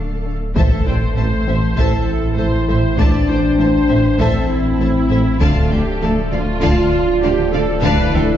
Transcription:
Already playing: D1 D3 A3 A4 F5 A5
0.26 D4
0.55 A1 A2 E3 A3 C4 A4 C5 E5 A5, taiko, impact
0.86 A1 A2 E4 C5 D5 G5
1.16 A1 A2 C4 C5 E5 A5
1.47 A1 A2 C4 C5 E5
1.77 A1 A2 A3 E4 A4 C5 E5 A5, taiko
2.37 A1 A2 A4 C5 E5 A5
2.68 A1 A2 A4 C5 E5
2.98 A1 A2 A3 D4 C5 D5 E5 A5, taiko
3.28 A1 A2 E4 C5 D5 G5
3.58 A1 A2 C4 C5 E5 A5
3.89 A1 A2 C4 C5 E5
4.19 A1 A2 A3 C4 A4 C5 E5 A5, taiko
4.51 E4
4.80 A1 A2 A4 C5 E5 A5
5.10 A1 A2 A4 C5 E5
5.40 D1 D2 D3 F3 A3 D4 F4 D5 F5 A5, taiko
5.71 D2 D3 A3 G4 D5 E5 G5
6.01 D2 D3 F3 A4 D5 F5 A5
6.31 D2 D3 F3 F4 D5 F5
6.61 D2 D3 F4 D5 F5 A5, taiko
7.23 D2 D3 D4 G4 D5 F5 A5
7.53 D2 D3 D4 A4 D5 F5
7.82 D2 D3 E4 B4 D5 F5 A5, taiko
8.13 D2 D3 A3 A4 D5 E5 G5

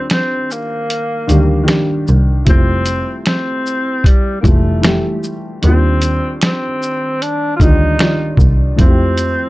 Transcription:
Already playing: D#3 G3 D4 F4
0.10 C4, finger snap, snare, closed hi-hat
0.51 A#3, shaker
0.90 closed hi-hat
1.27 D2 D#3 G3 D4, closed hi-hat, shaker
1.32 G4
1.63 D#3 G3 D4
1.68 G4, finger snap, snare, closed hi-hat
2.07 C2, shaker
2.45 F1 G3 A3 E4, kick, closed hi-hat
2.49 C4 F4
2.86 closed hi-hat, shaker
3.26 C4, finger snap, snare, closed hi-hat
3.66 shaker
4.04 G3, kick, closed hi-hat
4.41 E3 G3 A#3, kick
4.45 F1 A3 F4, closed hi-hat, shaker
4.81 E3 G3 A3, finger snap, snare, closed hi-hat
4.86 G4
5.23 shaker
5.62 D#2 D#3 G3 C4 D4, closed hi-hat
5.67 F4
6.02 closed hi-hat, shaker
6.42 C4, finger snap, snare, closed hi-hat
6.83 shaker
7.22 D4, closed hi-hat
7.56 D#3 F4, kick
7.61 D2 G3 D4 D#4 F4, closed hi-hat, shaker
7.98 D#3 G3 D5, finger snap, snare, closed hi-hat
8.03 F4
8.37 C2, kick, shaker
8.76 F2 F3 A3 E4, kick, closed hi-hat
8.80 C4 F4
8.87 G4
9.18 closed hi-hat, shaker

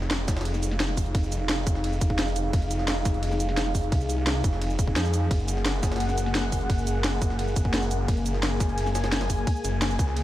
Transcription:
Already playing: F1 D#4 G#4 F5
0.02 snare
0.11 snare, closed hi-hat, ride
0.28 kick, snare, closed hi-hat, ride, shaker
0.37 snare, closed hi-hat
0.41 snare, closed hi-hat
0.45 closed hi-hat, ride
0.54 snare, shaker
0.63 closed hi-hat, ride, shaker
0.71 snare
0.80 snare, closed hi-hat, ride
0.89 snare
0.97 kick, closed hi-hat, open hi-hat, ride, shaker
1.06 closed hi-hat
1.15 F1, kick, closed hi-hat, ride
1.23 shaker
1.32 closed hi-hat, ride, shaker
1.49 snare, closed hi-hat, ride
1.67 kick, closed hi-hat, open hi-hat, ride, shaker
1.75 snare
1.84 closed hi-hat, ride
1.93 shaker
2.01 kick, closed hi-hat, ride, shaker
2.10 kick
2.19 snare, closed hi-hat, ride
2.27 snare, shaker
2.36 closed hi-hat, ride, shaker
2.53 F1, kick, closed hi-hat, ride
2.62 closed hi-hat
2.71 closed hi-hat, ride, shaker
2.79 snare
2.88 snare, closed hi-hat, ride
3.05 kick, snare, closed hi-hat, ride, shaker
3.14 closed hi-hat
3.23 closed hi-hat, ride
3.31 snare, shaker
3.40 closed hi-hat, ride, shaker
3.49 snare
3.57 snare, closed hi-hat, ride
3.66 snare
3.75 kick, closed hi-hat, open hi-hat, ride, shaker
3.83 closed hi-hat
3.92 C2, kick, closed hi-hat, ride
4.01 shaker
4.09 closed hi-hat, ride, shaker
4.27 snare, closed hi-hat, ride
4.44 F1, kick, closed hi-hat, open hi-hat, ride, shaker
4.53 snare
4.62 closed hi-hat, ride
4.70 closed hi-hat, shaker
4.79 kick, closed hi-hat, ride, shaker
4.87 kick
4.96 F2, snare, closed hi-hat, ride
5.05 snare, shaker
5.14 closed hi-hat, ride, shaker
5.31 F#1 A#3 F#5, kick, closed hi-hat, ride
5.40 closed hi-hat
5.48 closed hi-hat, ride, shaker
5.57 snare
5.66 snare, closed hi-hat, ride
5.83 kick, snare, closed hi-hat, ride, shaker
5.92 snare, closed hi-hat
5.96 snare, closed hi-hat
6.00 closed hi-hat, ride
6.09 snare, shaker
6.18 closed hi-hat, ride, shaker
6.26 snare
6.35 snare, closed hi-hat, ride
6.44 snare
6.52 kick, closed hi-hat, open hi-hat, ride, shaker
6.61 closed hi-hat
6.70 F#1, kick, closed hi-hat, ride
6.78 shaker
6.87 closed hi-hat, ride, shaker
7.04 snare, closed hi-hat, ride
7.22 kick, closed hi-hat, open hi-hat, ride, shaker
7.30 snare
7.39 closed hi-hat, ride
7.48 shaker
7.56 kick, closed hi-hat, ride, shaker
7.65 kick
7.74 snare, closed hi-hat, ride
7.82 snare, shaker
7.91 closed hi-hat, ride, shaker
8.08 F#1 G#5, kick, closed hi-hat, ride
8.17 closed hi-hat
8.26 closed hi-hat, ride, shaker
8.34 snare
8.43 snare, closed hi-hat, ride
8.60 kick, snare, closed hi-hat, ride, shaker
8.69 closed hi-hat
8.78 closed hi-hat, ride
8.86 snare, shaker
8.95 snare, closed hi-hat, ride, shaker
9.04 snare, closed hi-hat
9.12 snare, closed hi-hat, ride
9.21 snare, closed hi-hat
9.30 kick, closed hi-hat, open hi-hat, ride, shaker
9.38 closed hi-hat
9.47 kick, closed hi-hat, ride
9.56 shaker
9.64 F#1, closed hi-hat, ride, shaker
9.82 snare, closed hi-hat, ride
9.91 shaker
9.99 C#2, kick, closed hi-hat, open hi-hat, ride, shaker
10.08 snare
10.16 closed hi-hat, ride

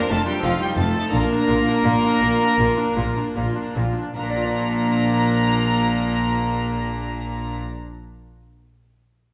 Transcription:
Already playing: A#3 D4 F4 A#4
0.10 F1 F2 A3 F4 A4 A5
0.27 G3 D4 G4 G5
0.40 F1 F2 C4 D#4 F4
0.44 F2 F3 F4 F5
0.60 G3 D#4 G4 G5
0.77 F1 F2 A3 F4 A4 A5
0.97 D#4
1.09 A#3 D4 F4 A#5
1.13 A#1 A#2 A#3 F4 A#4
1.33 D4
1.48 A#1 A#2 F4
1.68 D4
1.84 A#1 A#2 F4
2.05 D4
2.21 A#1 A#2 F4
2.42 D4
2.58 A#1 A#2 F4
2.79 D4
2.97 A#1 A#2 F4
3.18 D4
3.36 A#1 A#2 F4
3.57 D4
3.75 A#1 A#2 F4
3.97 D4
4.16 A#1 A#2 A#3 D4 A#5
4.23 A#3
4.30 D4
4.37 F4
4.44 D5

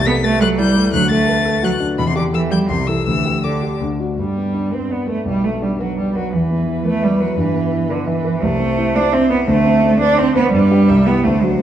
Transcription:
Already playing: C2
0.07 B3 A4 B6
0.24 A3 B4 A6
0.41 F#3 A4 F#6
0.58 G3 E4 G6
0.76 A3
0.93 D2 F#3 F#6
1.10 A3 A4 A6
1.28 B4
1.45 A4
1.63 F#3 F#4 F#6
1.80 D4
1.98 E2 B2 B5
2.07 C3 C6
2.15 D3 G4 D6
2.33 E3 A4 E6
2.51 G3 G4 G6
2.69 C2 C3 C6
2.87 E3 E4 A4 E6
3.07 D2 E3 E6
3.25 G4
3.43 D3 A4 D6
3.63 G4
3.81 D2
4.00 D4 F#4
4.17 G2 G3
4.36 B3
4.54 D4
4.72 C4 B4
4.89 B3 D5
5.07 A3 B4
5.25 B1 G3
5.43 A3 B3
5.62 G3 D4
5.79 F#3 F#4 B4
5.97 G3 D5
6.15 F#3 F#4 B4
6.33 E2 E3 B4
6.50 B3
6.67 E4
6.85 A3 B4
7.02 G3 E5
7.20 F#3 B4
7.37 G2 E3
7.54 B3
7.72 E4
7.89 D3 B4
8.07 E3 E5
8.25 B4
8.42 C2 A3 C5
8.60 C4
8.78 E4
8.96 D4 C5
9.13 C4 E5
9.30 B3 C5
9.48 D2 A3
9.66 C4
9.84 D4
10.00 D4 C5
10.18 C4 D5
10.36 B3 C5
10.52 G2 G3 B4
10.71 D4 G4
10.88 C2 E5
11.07 B3 E4 G4
11.24 D2 A3 C5
11.42 F#3 D4 F#4

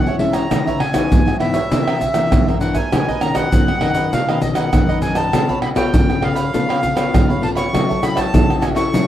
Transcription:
Already playing: E3 G#3 C#4 E4 F#5
0.06 C#5 E5 G#5, pandeiro, shaker, surdo
0.19 G#3 C#4 E4 A4 C#5 E5 G#5, pandeiro
0.33 C#5 E5 G#5 A#5, pandeiro, tamborim, shaker
0.51 C#3 E3 B3 D#4 E4 B4 C#5 E5, pandeiro, tamborim, shaker, surdo
0.67 B4 C#5 E5, pandeiro, shaker, surdo
0.80 G#5, muted cavaquinho stroke, pandeiro, tamborim
0.93 E3 B3 D#4 B4 C#5 E5, pandeiro, tamborim, shaker, surdo
1.11 G#2 E4 B4 C#5 E5, pandeiro, shaker, surdo
1.28 pandeiro, tamborim, shaker
1.40 E3 B3 D#4 E4 B4 C#5 E5, pandeiro, tamborim, surdo
1.54 B4 C#5 E5, pandeiro, shaker
1.72 C3 E3 A#3 D4 E4 A#4 C5 E5, pandeiro, shaker, surdo
1.87 A#4 C5 E5, pandeiro, tamborim, shaker
2.00 muted cavaquinho stroke, pandeiro, shaker, surdo
2.14 E3 A#3 D4 A#4 C5 E5, pandeiro, tamborim, shaker
2.32 G2, pandeiro, tamborim, shaker, surdo
2.48 A#4 C5 E5, pandeiro, tamborim, shaker, surdo
2.60 E3 A#3 D4 E4 A#4 C5 E5 F#5, pandeiro, shaker
2.74 A#4 C5 E5 G#5, pandeiro, shaker, surdo
2.92 B2 D#3 A#3 C#4 D#4 A#4 B4 D#5, pandeiro, tamborim, shaker, surdo
3.08 A#4 B4 D#5, pandeiro, shaker, surdo
3.21 D#3 A#3 C#4 A#5, muted cavaquinho stroke, pandeiro, tamborim, shaker
3.35 A#4 B4 D#5 F#5, pandeiro, tamborim, shaker, surdo
3.52 F#2 D#3 A#3 C#4 D#4 A#4 B4 D#5, pandeiro, shaker, surdo
3.68 pandeiro, tamborim, shaker
3.81 D#3 A#3 C#4 D#4 A#4 B4 D#5, pandeiro, tamborim
3.95 A#4 B4 D#5, pandeiro, shaker
4.13 B2 D#4 A#4 B4 D#5 F5, pandeiro, shaker, surdo
4.29 D#3 A#3 C#4 A#4 B4 D#5, pandeiro, tamborim, shaker
4.41 D#5, muted cavaquinho stroke, pandeiro, shaker, surdo
4.55 A#4 B4 D#5 F#5, pandeiro, tamborim, shaker
4.73 F#2 D#3 A#3 C#4, pandeiro, tamborim, shaker, surdo
4.89 A#4 B4 D#5, pandeiro, shaker, surdo
5.02 D#4 A#4 B4 D#5 G#5, pandeiro, shaker
5.15 A#4 B4 D#5 A5, pandeiro, tamborim, shaker
5.33 C#3 B3 F4 A4 C#5 F5 B5, pandeiro, tamborim, shaker, surdo
5.49 C#5 F5 B5, pandeiro, shaker, surdo
5.62 B5, muted cavaquinho stroke, pandeiro, tamborim
5.75 B3 F4 A4 C#5 F5 G5 B5, pandeiro, tamborim, shaker, surdo
5.93 C#3 A4 C#5 F5 B5, pandeiro, shaker, surdo
6.10 pandeiro, tamborim, shaker
6.22 B3 F4 A4 C#5 F5 B5, pandeiro, tamborim
6.35 C#5 F5 B5, pandeiro, shaker
6.53 C#3 B3 F4 A4 C#5 F5 B5, pandeiro, shaker, surdo
6.69 C#5 F5 B5, pandeiro, tamborim, shaker
6.81 muted cavaquinho stroke, pandeiro, shaker, surdo
6.95 B3 F4 A4 C#5 F5 B5, pandeiro, tamborim, shaker
7.14 C#3, pandeiro, tamborim, shaker, surdo
7.29 C#5 F5 B5, pandeiro, shaker, surdo
7.42 B3 F4 A4 C#5 F5 A5 B5, pandeiro
7.55 C#5 F5 B5 C#6, pandeiro, tamborim, shaker
7.73 F#3 C#4 E4 F#4 A4 C#5 E5, pandeiro, tamborim, shaker, surdo
7.89 A4 C#5 E5, pandeiro, shaker, surdo
8.01 C#4 E4 A4 B5, muted cavaquinho stroke, pandeiro, tamborim, shaker
8.15 A4 C#5 E5 A5, pandeiro, tamborim, shaker, surdo
8.32 C#3 C#4 E4 F#4 A4 C#5 E5, pandeiro, shaker, surdo
8.50 pandeiro, tamborim, shaker
8.61 F#4 A4 C#5 E5 G#5, pandeiro, tamborim, shaker
8.75 C#4 E4 A4 C#5 E5 C#6, pandeiro, shaker
8.93 F#3 F#4 A4 C#5 E5, pandeiro, shaker, surdo

